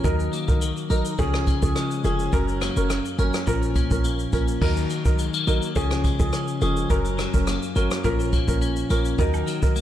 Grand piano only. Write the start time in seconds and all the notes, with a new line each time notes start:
0.04 F#3 D#4 A#4
0.48 F#3 D#4 A#4
0.90 F#3 D#4 A#4
1.18 F3 C#4 G#4
1.62 F3 C#4 G#4
2.04 F3 C#4 G#4
2.33 F#3 C#4 A#4
2.76 F#3 C#4 A#4
3.18 F#3 C#4 A#4
3.47 F3 C#4 A#4
3.91 F3 C#4 A#4
4.33 F3 C#4 A#4
4.61 F#3 D#4 A#4
5.05 F#3 D#4 A#4
5.47 F#3 D#4 A#4
5.75 F3 C#4 G#4
6.19 F3 C#4 G#4
6.61 F3 C#4 G#4
6.90 F#3 C#4 A#4
7.33 F#3 C#4 A#4
7.75 F#3 C#4 A#4
8.04 F3 C#4 A#4
8.48 F3 C#4 A#4
8.90 F3 C#4 A#4
9.18 F#3 D#4 A#4
9.62 F#3 D#4 A#4